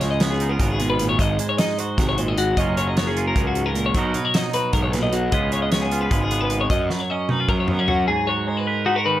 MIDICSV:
0, 0, Header, 1, 5, 480
1, 0, Start_track
1, 0, Key_signature, 6, "major"
1, 0, Tempo, 393185
1, 1455, Time_signature, 7, 3, 24, 8
1, 11231, End_track
2, 0, Start_track
2, 0, Title_t, "Clean electric guitar"
2, 0, Program_c, 0, 27
2, 6, Note_on_c, 0, 73, 55
2, 125, Note_off_c, 0, 73, 0
2, 129, Note_on_c, 0, 75, 58
2, 250, Note_off_c, 0, 75, 0
2, 250, Note_on_c, 0, 73, 74
2, 369, Note_on_c, 0, 68, 62
2, 372, Note_off_c, 0, 73, 0
2, 604, Note_off_c, 0, 68, 0
2, 604, Note_on_c, 0, 70, 55
2, 847, Note_off_c, 0, 70, 0
2, 847, Note_on_c, 0, 68, 60
2, 1091, Note_off_c, 0, 68, 0
2, 1095, Note_on_c, 0, 71, 66
2, 1327, Note_off_c, 0, 71, 0
2, 1332, Note_on_c, 0, 73, 63
2, 1449, Note_off_c, 0, 73, 0
2, 1449, Note_on_c, 0, 75, 75
2, 1693, Note_off_c, 0, 75, 0
2, 1693, Note_on_c, 0, 72, 57
2, 1814, Note_off_c, 0, 72, 0
2, 1820, Note_on_c, 0, 73, 60
2, 1929, Note_off_c, 0, 73, 0
2, 1934, Note_on_c, 0, 75, 66
2, 2177, Note_off_c, 0, 75, 0
2, 2177, Note_on_c, 0, 72, 63
2, 2424, Note_off_c, 0, 72, 0
2, 2424, Note_on_c, 0, 70, 72
2, 2540, Note_off_c, 0, 70, 0
2, 2548, Note_on_c, 0, 73, 57
2, 2662, Note_off_c, 0, 73, 0
2, 2662, Note_on_c, 0, 72, 65
2, 2787, Note_off_c, 0, 72, 0
2, 2787, Note_on_c, 0, 75, 58
2, 2902, Note_off_c, 0, 75, 0
2, 2907, Note_on_c, 0, 66, 60
2, 3142, Note_off_c, 0, 66, 0
2, 3147, Note_on_c, 0, 75, 72
2, 3382, Note_off_c, 0, 75, 0
2, 3387, Note_on_c, 0, 73, 61
2, 3509, Note_off_c, 0, 73, 0
2, 3509, Note_on_c, 0, 75, 61
2, 3624, Note_off_c, 0, 75, 0
2, 3634, Note_on_c, 0, 73, 70
2, 3747, Note_off_c, 0, 73, 0
2, 3749, Note_on_c, 0, 68, 62
2, 3984, Note_off_c, 0, 68, 0
2, 3998, Note_on_c, 0, 70, 58
2, 4229, Note_off_c, 0, 70, 0
2, 4238, Note_on_c, 0, 66, 55
2, 4466, Note_off_c, 0, 66, 0
2, 4466, Note_on_c, 0, 70, 66
2, 4703, Note_off_c, 0, 70, 0
2, 4712, Note_on_c, 0, 73, 56
2, 4831, Note_off_c, 0, 73, 0
2, 4831, Note_on_c, 0, 75, 73
2, 5068, Note_off_c, 0, 75, 0
2, 5068, Note_on_c, 0, 71, 63
2, 5187, Note_off_c, 0, 71, 0
2, 5187, Note_on_c, 0, 73, 60
2, 5302, Note_off_c, 0, 73, 0
2, 5302, Note_on_c, 0, 75, 64
2, 5539, Note_off_c, 0, 75, 0
2, 5544, Note_on_c, 0, 71, 64
2, 5775, Note_off_c, 0, 71, 0
2, 5780, Note_on_c, 0, 70, 78
2, 5891, Note_off_c, 0, 70, 0
2, 5896, Note_on_c, 0, 73, 63
2, 6017, Note_off_c, 0, 73, 0
2, 6017, Note_on_c, 0, 71, 70
2, 6133, Note_off_c, 0, 71, 0
2, 6138, Note_on_c, 0, 75, 64
2, 6259, Note_off_c, 0, 75, 0
2, 6264, Note_on_c, 0, 66, 62
2, 6502, Note_off_c, 0, 66, 0
2, 6505, Note_on_c, 0, 75, 76
2, 6743, Note_off_c, 0, 75, 0
2, 6753, Note_on_c, 0, 73, 59
2, 6859, Note_off_c, 0, 73, 0
2, 6864, Note_on_c, 0, 75, 64
2, 6979, Note_off_c, 0, 75, 0
2, 6983, Note_on_c, 0, 73, 68
2, 7102, Note_off_c, 0, 73, 0
2, 7103, Note_on_c, 0, 68, 61
2, 7337, Note_off_c, 0, 68, 0
2, 7337, Note_on_c, 0, 71, 58
2, 7585, Note_off_c, 0, 71, 0
2, 7585, Note_on_c, 0, 68, 57
2, 7822, Note_off_c, 0, 68, 0
2, 7822, Note_on_c, 0, 71, 63
2, 8062, Note_off_c, 0, 71, 0
2, 8068, Note_on_c, 0, 73, 58
2, 8184, Note_off_c, 0, 73, 0
2, 8189, Note_on_c, 0, 75, 80
2, 8421, Note_off_c, 0, 75, 0
2, 8421, Note_on_c, 0, 71, 58
2, 8545, Note_off_c, 0, 71, 0
2, 8545, Note_on_c, 0, 73, 60
2, 8668, Note_off_c, 0, 73, 0
2, 8668, Note_on_c, 0, 75, 64
2, 8914, Note_off_c, 0, 75, 0
2, 8914, Note_on_c, 0, 71, 64
2, 9141, Note_off_c, 0, 71, 0
2, 9146, Note_on_c, 0, 70, 73
2, 9263, Note_off_c, 0, 70, 0
2, 9278, Note_on_c, 0, 73, 58
2, 9394, Note_off_c, 0, 73, 0
2, 9394, Note_on_c, 0, 70, 64
2, 9510, Note_off_c, 0, 70, 0
2, 9510, Note_on_c, 0, 73, 62
2, 9620, Note_on_c, 0, 66, 61
2, 9625, Note_off_c, 0, 73, 0
2, 9856, Note_off_c, 0, 66, 0
2, 9861, Note_on_c, 0, 68, 80
2, 10099, Note_off_c, 0, 68, 0
2, 10100, Note_on_c, 0, 73, 63
2, 10339, Note_off_c, 0, 73, 0
2, 10339, Note_on_c, 0, 70, 74
2, 10465, Note_off_c, 0, 70, 0
2, 10465, Note_on_c, 0, 71, 64
2, 10580, Note_off_c, 0, 71, 0
2, 10580, Note_on_c, 0, 70, 69
2, 10817, Note_on_c, 0, 66, 84
2, 10818, Note_off_c, 0, 70, 0
2, 10940, Note_off_c, 0, 66, 0
2, 10940, Note_on_c, 0, 70, 62
2, 11057, Note_on_c, 0, 71, 71
2, 11058, Note_off_c, 0, 70, 0
2, 11231, Note_off_c, 0, 71, 0
2, 11231, End_track
3, 0, Start_track
3, 0, Title_t, "Clean electric guitar"
3, 0, Program_c, 1, 27
3, 0, Note_on_c, 1, 49, 60
3, 26, Note_on_c, 1, 56, 58
3, 269, Note_on_c, 1, 59, 55
3, 505, Note_on_c, 1, 63, 51
3, 630, Note_off_c, 1, 63, 0
3, 630, Note_on_c, 1, 65, 42
3, 726, Note_off_c, 1, 49, 0
3, 741, Note_on_c, 1, 49, 59
3, 978, Note_off_c, 1, 49, 0
3, 980, Note_on_c, 1, 47, 57
3, 1217, Note_off_c, 1, 47, 0
3, 1225, Note_on_c, 1, 46, 63
3, 1433, Note_off_c, 1, 56, 0
3, 1460, Note_off_c, 1, 46, 0
3, 1463, Note_off_c, 1, 59, 0
3, 1463, Note_off_c, 1, 65, 0
3, 1466, Note_on_c, 1, 44, 63
3, 1708, Note_on_c, 1, 56, 55
3, 1957, Note_on_c, 1, 63, 52
3, 2197, Note_on_c, 1, 66, 50
3, 2422, Note_off_c, 1, 44, 0
3, 2433, Note_on_c, 1, 48, 52
3, 2664, Note_off_c, 1, 48, 0
3, 2669, Note_on_c, 1, 46, 52
3, 2897, Note_off_c, 1, 46, 0
3, 2902, Note_on_c, 1, 44, 54
3, 3115, Note_off_c, 1, 56, 0
3, 3120, Note_off_c, 1, 63, 0
3, 3140, Note_off_c, 1, 44, 0
3, 3149, Note_on_c, 1, 42, 58
3, 3161, Note_on_c, 1, 54, 46
3, 3163, Note_on_c, 1, 61, 54
3, 3168, Note_off_c, 1, 66, 0
3, 3172, Note_on_c, 1, 65, 53
3, 3184, Note_on_c, 1, 70, 49
3, 3385, Note_off_c, 1, 54, 0
3, 3390, Note_on_c, 1, 54, 58
3, 3627, Note_off_c, 1, 61, 0
3, 3632, Note_on_c, 1, 59, 55
3, 3748, Note_off_c, 1, 59, 0
3, 3748, Note_on_c, 1, 61, 41
3, 3855, Note_off_c, 1, 65, 0
3, 3870, Note_on_c, 1, 65, 53
3, 4095, Note_off_c, 1, 42, 0
3, 4109, Note_on_c, 1, 42, 59
3, 4344, Note_off_c, 1, 42, 0
3, 4350, Note_on_c, 1, 44, 57
3, 4575, Note_off_c, 1, 44, 0
3, 4580, Note_on_c, 1, 46, 58
3, 4796, Note_off_c, 1, 65, 0
3, 4812, Note_off_c, 1, 70, 0
3, 4820, Note_off_c, 1, 46, 0
3, 4824, Note_off_c, 1, 61, 0
3, 4826, Note_off_c, 1, 54, 0
3, 4829, Note_on_c, 1, 47, 62
3, 4841, Note_on_c, 1, 54, 52
3, 4850, Note_on_c, 1, 63, 51
3, 4861, Note_on_c, 1, 66, 52
3, 4868, Note_on_c, 1, 70, 60
3, 5047, Note_off_c, 1, 54, 0
3, 5062, Note_on_c, 1, 54, 56
3, 5301, Note_off_c, 1, 63, 0
3, 5315, Note_on_c, 1, 63, 54
3, 5536, Note_off_c, 1, 66, 0
3, 5551, Note_on_c, 1, 66, 46
3, 5778, Note_off_c, 1, 47, 0
3, 5783, Note_on_c, 1, 44, 61
3, 6018, Note_off_c, 1, 44, 0
3, 6023, Note_on_c, 1, 46, 59
3, 6248, Note_off_c, 1, 46, 0
3, 6253, Note_on_c, 1, 47, 61
3, 6477, Note_off_c, 1, 66, 0
3, 6480, Note_off_c, 1, 63, 0
3, 6490, Note_on_c, 1, 49, 68
3, 6496, Note_off_c, 1, 54, 0
3, 6496, Note_off_c, 1, 70, 0
3, 6497, Note_off_c, 1, 47, 0
3, 6501, Note_on_c, 1, 56, 53
3, 6507, Note_on_c, 1, 59, 55
3, 6519, Note_on_c, 1, 65, 52
3, 6525, Note_on_c, 1, 71, 55
3, 6724, Note_off_c, 1, 56, 0
3, 6738, Note_on_c, 1, 56, 55
3, 6984, Note_off_c, 1, 59, 0
3, 7000, Note_on_c, 1, 59, 53
3, 7224, Note_off_c, 1, 65, 0
3, 7229, Note_on_c, 1, 65, 50
3, 7448, Note_off_c, 1, 56, 0
3, 7462, Note_on_c, 1, 56, 58
3, 7692, Note_off_c, 1, 59, 0
3, 7707, Note_on_c, 1, 59, 52
3, 7922, Note_off_c, 1, 56, 0
3, 7936, Note_on_c, 1, 56, 54
3, 8150, Note_off_c, 1, 56, 0
3, 8156, Note_off_c, 1, 65, 0
3, 8164, Note_off_c, 1, 71, 0
3, 8175, Note_on_c, 1, 42, 66
3, 8176, Note_off_c, 1, 49, 0
3, 8184, Note_off_c, 1, 59, 0
3, 8426, Note_on_c, 1, 54, 54
3, 8680, Note_on_c, 1, 61, 54
3, 8911, Note_on_c, 1, 63, 45
3, 9034, Note_off_c, 1, 63, 0
3, 9034, Note_on_c, 1, 65, 44
3, 9143, Note_off_c, 1, 54, 0
3, 9157, Note_on_c, 1, 54, 57
3, 9387, Note_off_c, 1, 61, 0
3, 9391, Note_on_c, 1, 59, 51
3, 9510, Note_off_c, 1, 59, 0
3, 9510, Note_on_c, 1, 61, 44
3, 9614, Note_off_c, 1, 54, 0
3, 9629, Note_on_c, 1, 54, 55
3, 9856, Note_off_c, 1, 42, 0
3, 9864, Note_off_c, 1, 61, 0
3, 9866, Note_off_c, 1, 65, 0
3, 9876, Note_on_c, 1, 44, 69
3, 10116, Note_on_c, 1, 66, 55
3, 10343, Note_off_c, 1, 54, 0
3, 10348, Note_on_c, 1, 56, 63
3, 10588, Note_on_c, 1, 71, 52
3, 10806, Note_off_c, 1, 66, 0
3, 10811, Note_on_c, 1, 63, 59
3, 10929, Note_off_c, 1, 63, 0
3, 10929, Note_on_c, 1, 66, 44
3, 11053, Note_on_c, 1, 51, 61
3, 11231, Note_off_c, 1, 44, 0
3, 11231, Note_off_c, 1, 51, 0
3, 11231, Note_off_c, 1, 56, 0
3, 11231, Note_off_c, 1, 66, 0
3, 11231, Note_off_c, 1, 71, 0
3, 11231, End_track
4, 0, Start_track
4, 0, Title_t, "Picked electric bass"
4, 0, Program_c, 2, 34
4, 0, Note_on_c, 2, 37, 83
4, 685, Note_off_c, 2, 37, 0
4, 728, Note_on_c, 2, 32, 74
4, 1403, Note_off_c, 2, 32, 0
4, 1451, Note_on_c, 2, 32, 87
4, 1677, Note_off_c, 2, 32, 0
4, 2421, Note_on_c, 2, 32, 71
4, 3091, Note_off_c, 2, 32, 0
4, 3142, Note_on_c, 2, 30, 80
4, 4052, Note_off_c, 2, 30, 0
4, 4099, Note_on_c, 2, 37, 71
4, 4771, Note_off_c, 2, 37, 0
4, 4821, Note_on_c, 2, 35, 91
4, 5044, Note_off_c, 2, 35, 0
4, 5779, Note_on_c, 2, 35, 70
4, 6451, Note_off_c, 2, 35, 0
4, 6501, Note_on_c, 2, 37, 82
4, 7412, Note_off_c, 2, 37, 0
4, 7460, Note_on_c, 2, 32, 77
4, 8131, Note_off_c, 2, 32, 0
4, 8179, Note_on_c, 2, 42, 89
4, 8403, Note_off_c, 2, 42, 0
4, 9142, Note_on_c, 2, 42, 69
4, 9811, Note_off_c, 2, 42, 0
4, 11231, End_track
5, 0, Start_track
5, 0, Title_t, "Drums"
5, 11, Note_on_c, 9, 42, 51
5, 21, Note_on_c, 9, 38, 30
5, 134, Note_off_c, 9, 42, 0
5, 143, Note_off_c, 9, 38, 0
5, 246, Note_on_c, 9, 42, 69
5, 255, Note_on_c, 9, 38, 92
5, 368, Note_off_c, 9, 42, 0
5, 377, Note_off_c, 9, 38, 0
5, 489, Note_on_c, 9, 42, 59
5, 611, Note_off_c, 9, 42, 0
5, 726, Note_on_c, 9, 42, 69
5, 727, Note_on_c, 9, 36, 86
5, 848, Note_off_c, 9, 42, 0
5, 849, Note_off_c, 9, 36, 0
5, 972, Note_on_c, 9, 42, 51
5, 1094, Note_off_c, 9, 42, 0
5, 1212, Note_on_c, 9, 42, 56
5, 1334, Note_off_c, 9, 42, 0
5, 1452, Note_on_c, 9, 36, 81
5, 1456, Note_on_c, 9, 42, 67
5, 1574, Note_off_c, 9, 36, 0
5, 1578, Note_off_c, 9, 42, 0
5, 1696, Note_on_c, 9, 42, 54
5, 1818, Note_off_c, 9, 42, 0
5, 1934, Note_on_c, 9, 42, 73
5, 1943, Note_on_c, 9, 38, 84
5, 2056, Note_off_c, 9, 42, 0
5, 2065, Note_off_c, 9, 38, 0
5, 2179, Note_on_c, 9, 42, 57
5, 2301, Note_off_c, 9, 42, 0
5, 2417, Note_on_c, 9, 36, 94
5, 2421, Note_on_c, 9, 42, 69
5, 2431, Note_on_c, 9, 38, 27
5, 2539, Note_off_c, 9, 36, 0
5, 2543, Note_off_c, 9, 42, 0
5, 2553, Note_off_c, 9, 38, 0
5, 2659, Note_on_c, 9, 42, 52
5, 2781, Note_off_c, 9, 42, 0
5, 2900, Note_on_c, 9, 42, 53
5, 3022, Note_off_c, 9, 42, 0
5, 3139, Note_on_c, 9, 36, 85
5, 3140, Note_on_c, 9, 42, 69
5, 3261, Note_off_c, 9, 36, 0
5, 3262, Note_off_c, 9, 42, 0
5, 3384, Note_on_c, 9, 42, 52
5, 3506, Note_off_c, 9, 42, 0
5, 3622, Note_on_c, 9, 42, 67
5, 3632, Note_on_c, 9, 38, 97
5, 3745, Note_off_c, 9, 42, 0
5, 3754, Note_off_c, 9, 38, 0
5, 3865, Note_on_c, 9, 42, 54
5, 3987, Note_off_c, 9, 42, 0
5, 4100, Note_on_c, 9, 36, 91
5, 4102, Note_on_c, 9, 42, 67
5, 4222, Note_off_c, 9, 36, 0
5, 4224, Note_off_c, 9, 42, 0
5, 4338, Note_on_c, 9, 42, 51
5, 4460, Note_off_c, 9, 42, 0
5, 4583, Note_on_c, 9, 42, 51
5, 4705, Note_off_c, 9, 42, 0
5, 4816, Note_on_c, 9, 42, 66
5, 4817, Note_on_c, 9, 36, 90
5, 4938, Note_off_c, 9, 42, 0
5, 4939, Note_off_c, 9, 36, 0
5, 5056, Note_on_c, 9, 42, 53
5, 5178, Note_off_c, 9, 42, 0
5, 5299, Note_on_c, 9, 42, 68
5, 5309, Note_on_c, 9, 38, 94
5, 5421, Note_off_c, 9, 42, 0
5, 5431, Note_off_c, 9, 38, 0
5, 5535, Note_on_c, 9, 42, 57
5, 5657, Note_off_c, 9, 42, 0
5, 5775, Note_on_c, 9, 42, 70
5, 5779, Note_on_c, 9, 36, 88
5, 5897, Note_off_c, 9, 42, 0
5, 5901, Note_off_c, 9, 36, 0
5, 6022, Note_on_c, 9, 42, 54
5, 6032, Note_on_c, 9, 38, 26
5, 6144, Note_off_c, 9, 42, 0
5, 6154, Note_off_c, 9, 38, 0
5, 6257, Note_on_c, 9, 42, 53
5, 6380, Note_off_c, 9, 42, 0
5, 6495, Note_on_c, 9, 42, 70
5, 6499, Note_on_c, 9, 36, 86
5, 6617, Note_off_c, 9, 42, 0
5, 6621, Note_off_c, 9, 36, 0
5, 6737, Note_on_c, 9, 42, 53
5, 6859, Note_off_c, 9, 42, 0
5, 6978, Note_on_c, 9, 42, 70
5, 6988, Note_on_c, 9, 38, 86
5, 7100, Note_off_c, 9, 42, 0
5, 7110, Note_off_c, 9, 38, 0
5, 7221, Note_on_c, 9, 42, 55
5, 7343, Note_off_c, 9, 42, 0
5, 7458, Note_on_c, 9, 42, 69
5, 7460, Note_on_c, 9, 36, 89
5, 7581, Note_off_c, 9, 42, 0
5, 7582, Note_off_c, 9, 36, 0
5, 7701, Note_on_c, 9, 42, 51
5, 7823, Note_off_c, 9, 42, 0
5, 7934, Note_on_c, 9, 42, 49
5, 8056, Note_off_c, 9, 42, 0
5, 8178, Note_on_c, 9, 42, 65
5, 8179, Note_on_c, 9, 36, 88
5, 8300, Note_off_c, 9, 42, 0
5, 8301, Note_off_c, 9, 36, 0
5, 8423, Note_on_c, 9, 38, 44
5, 8545, Note_off_c, 9, 38, 0
5, 8897, Note_on_c, 9, 48, 66
5, 9019, Note_off_c, 9, 48, 0
5, 9139, Note_on_c, 9, 36, 88
5, 9140, Note_on_c, 9, 47, 55
5, 9261, Note_off_c, 9, 36, 0
5, 9262, Note_off_c, 9, 47, 0
5, 9373, Note_on_c, 9, 45, 73
5, 9495, Note_off_c, 9, 45, 0
5, 9620, Note_on_c, 9, 43, 66
5, 9742, Note_off_c, 9, 43, 0
5, 11231, End_track
0, 0, End_of_file